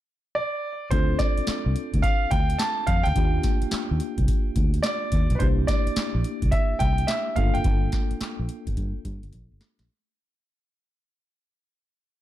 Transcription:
0.35 grand piano D5
0.91 fingered electric bass D2, tine electric piano C4 D4 F4 A4, grand piano C5, kick, closed hi-hat
1.19 grand piano D5, kick, snare, closed hi-hat
1.38 muted fingered electric bass stroke, closed hi-hat
1.47 muted fingered electric bass stroke, snare, clap, closed hi-hat
1.66 fingered electric bass C2
1.76 closed hi-hat
1.94 fingered electric bass D2, kick, closed hi-hat
2.02 grand piano F5, kick, closed hi-hat
2.31 fingered electric bass D2, grand piano G5, kick, closed hi-hat
2.50 closed hi-hat
2.58 grand piano A5, snare, clap, closed hi-hat
2.87 fingered electric bass F2, grand piano F5, kick, closed hi-hat
3.03 fingered electric bass D2, grand piano G5, closed hi-hat
3.15 fingered electric bass D#2, tine electric piano A#3 D4 F4 G4, kick, closed hi-hat
3.43 kick, snare, closed hi-hat
3.62 muted fingered electric bass stroke, closed hi-hat
3.71 muted fingered electric bass stroke, snare, clap, closed hi-hat
3.91 fingered electric bass D#2
4.00 closed hi-hat
4.18 fingered electric bass C2, kick, closed hi-hat
4.28 kick, closed hi-hat
4.56 fingered electric bass D2, kick, closed hi-hat
4.74 closed hi-hat
4.83 grand piano D5, snare, clap, closed hi-hat
5.12 fingered electric bass D#2, kick, closed hi-hat
5.30 fingered electric bass B1, closed hi-hat
5.35 grand piano B4 C5
5.40 fingered electric bass C2, tine electric piano A#3 D4 E4 G4, kick, closed hi-hat
5.67 grand piano D5, kick, snare, closed hi-hat
5.87 muted fingered electric bass stroke, closed hi-hat
5.96 muted fingered electric bass stroke, snare, clap, closed hi-hat
6.14 fingered electric bass A#1
6.24 closed hi-hat
6.42 fingered electric bass C2, kick, closed hi-hat
6.51 grand piano E5, kick, closed hi-hat
6.79 fingered electric bass C2, grand piano G5, kick, closed hi-hat
6.98 closed hi-hat
7.07 grand piano E5, snare, clap, closed hi-hat
7.36 fingered electric bass G1, tine electric piano A#3 D4 F4 A4, grand piano F5, kick, closed hi-hat
7.54 fingered electric bass F#1, grand piano G5, closed hi-hat
7.64 fingered electric bass G1, kick, closed hi-hat
7.92 kick, snare, closed hi-hat
8.11 muted fingered electric bass stroke, closed hi-hat
8.21 muted fingered electric bass stroke, snare, clap, closed hi-hat
8.39 fingered electric bass A#1
8.49 closed hi-hat
8.67 fingered electric bass G1, kick, closed hi-hat
8.77 fingered electric bass G2, kick, closed hi-hat
9.05 fingered electric bass G2, kick, closed hi-hat
9.23 fingered electric bass G1, closed hi-hat
9.33 fingered electric bass A#1, kick, closed hi-hat
9.52 fingered electric bass G1
9.61 snare, closed hi-hat
9.79 fingered electric bass A#1, snare, closed hi-hat

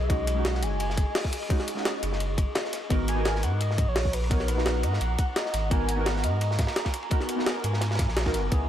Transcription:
Already playing: sub bass B1, synth stab G#3 C#4 D#4 F#4, ambient pad G#4 D#5
0.04 soft synth lead E5
0.09 synth stab G#3 C#4 D#4 F#4, soft synth lead D#5, kick, closed hi-hat, ride
0.27 closed hi-hat, ride
0.34 synth stab G#3 C#4 D#4
0.39 synth stab F#4
0.45 soft synth lead F#5, snare, closed hi-hat, ride
0.54 snare
0.63 sub bass F#1, soft synth lead G#5, closed hi-hat, ride
0.80 closed hi-hat, ride
0.90 snare
0.97 kick, closed hi-hat, ride
1.15 snare, closed hi-hat, open hi-hat
1.24 kick, snare
1.33 closed hi-hat, ride
1.42 ride
1.49 synth stab G#3 C#4 D#4 F#4, kick, closed hi-hat, ride
1.60 snare, ride
1.68 closed hi-hat, ride
1.75 synth stab G#3 C#4 D#4, snare
1.79 synth stab F#4
1.85 snare, closed hi-hat, ride
2.03 sub bass F#1, closed hi-hat, ride
2.13 snare
2.20 closed hi-hat, ride
2.38 kick, closed hi-hat, ride
2.55 snare, closed hi-hat, ride
2.65 snare
2.73 snare, closed hi-hat, ride
2.89 sub bass G#1, synth stab B3 D#4 F#4 A#4, ambient pad F#5 A#5, kick, closed hi-hat, ride
3.08 soft synth lead G#5, closed hi-hat, ride
3.15 synth stab B3 D#4 F#4
3.20 synth stab A#4
3.25 snare, closed hi-hat, ride
3.35 snare
3.43 sub bass G#2, soft synth lead F#5, closed hi-hat, ride
3.61 soft synth lead D#5, closed hi-hat, ride
3.71 snare
3.78 kick, closed hi-hat, ride
3.88 sub bass A#1, soft synth lead C#5
3.96 snare, closed hi-hat, open hi-hat
4.05 kick, snare
4.13 soft synth lead B4, closed hi-hat, ride
4.24 ride
4.30 synth stab B3 D#4 F#4 A#4, soft synth lead C#5, kick, closed hi-hat, ride
4.40 snare, ride
4.48 soft synth lead B4, closed hi-hat, ride
4.56 synth stab B3 D#4 F#4, snare
4.60 synth stab A#4
4.66 snare, closed hi-hat, ride
4.83 sub bass G#2, soft synth lead D#5, closed hi-hat, ride
4.93 snare
5.01 sub bass A#1, soft synth lead F#5, closed hi-hat, ride
5.19 kick, closed hi-hat, ride
5.36 soft synth lead D#5, snare, closed hi-hat, ride
5.46 snare
5.54 sub bass G#1, snare, closed hi-hat, ride
5.70 synth stab B3 D#4 F#4 A#4, soft synth lead G#5, ambient pad G#5, kick, closed hi-hat, ride
5.89 closed hi-hat, ride
5.96 synth stab B3 D#4 F#4
6.00 synth stab A#4
6.06 soft synth lead F#5, snare, closed hi-hat, ride
6.16 snare
6.23 sub bass G#2, soft synth lead D#5, closed hi-hat, ride
6.41 closed hi-hat, ride
6.51 snare
6.59 kick, snare, closed hi-hat, ride
6.67 snare, ride
6.76 snare, closed hi-hat, ride
6.85 kick, snare, ride
6.94 closed hi-hat, ride
7.03 ride
7.10 synth stab B3 D#4 F#4 A#4, kick, closed hi-hat, ride
7.21 snare, ride
7.29 closed hi-hat, ride
7.36 synth stab B3 D#4 F#4, snare
7.41 synth stab A#4
7.46 snare, closed hi-hat, ride
7.64 sub bass G#2, closed hi-hat, ride
7.73 snare
7.81 snare, closed hi-hat, ride
7.91 snare, ride
7.95 snare, ride
7.99 kick, snare, closed hi-hat, ride
8.08 sub bass A#1, snare
8.17 snare, closed hi-hat, ride
8.21 snare, ride
8.25 synth stab B3 D#4 F#4 A#4, kick, snare, ride
8.34 sub bass F#1, snare, closed hi-hat, ride
8.51 sub bass C#2, synth stab B3 D#4 E4 G#4, kick, closed hi-hat, ride

